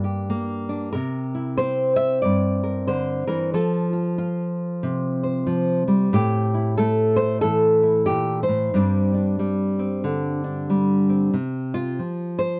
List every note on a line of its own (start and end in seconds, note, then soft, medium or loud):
0.00 0.94 G2 medium
0.00 0.29 A#3 medium
0.00 1.57 G4 soft
0.00 0.28 A#4 medium
0.30 0.91 A#3 medium
0.69 0.92 D4 soft
0.93 2.24 C3 medium
0.93 2.23 A#4 medium
1.35 3.51 E4 soft
1.57 3.53 C4 medium
1.57 1.96 C5 loud
1.96 2.21 E5 loud
2.22 3.54 G2 medium
2.22 2.87 D5 loud
2.64 3.26 A#4 soft
2.88 3.28 D3 medium
2.88 3.53 C5 loud
3.27 3.54 E3 medium
3.27 3.53 A#4 medium
3.54 5.45 F3 medium
3.54 3.92 F4 soft
3.54 5.49 A4 medium
3.93 4.17 F4 soft
4.18 6.11 F4 medium
4.83 6.10 C3 medium
5.23 6.14 C5 soft
5.47 5.87 F3 medium
5.88 6.14 G3 medium
6.13 8.09 A2 medium
6.13 6.77 G4 loud
6.54 7.82 E4 soft
6.78 8.71 A3 medium
6.78 7.16 A4 loud
7.16 7.41 C5 loud
7.41 8.71 E3 medium
7.41 8.05 A4 loud
7.83 8.71 E4 soft
8.06 8.48 A#2 medium
8.06 8.43 G4 loud
8.43 11.32 C5 medium
8.48 8.74 A2 medium
8.74 11.35 G2 medium
8.74 9.38 G3 soft
8.74 9.78 C4 medium
8.74 9.13 D4 medium
9.14 10.43 D4 soft
9.39 10.68 G3 medium
9.79 11.08 C4 soft
10.04 11.31 D3 medium
10.44 11.35 D4 soft
10.70 11.32 G3 medium
11.09 11.32 C4 soft
11.34 11.99 C3 medium
11.74 12.60 F4 medium
11.99 12.60 F3 medium
12.39 12.60 C5 loud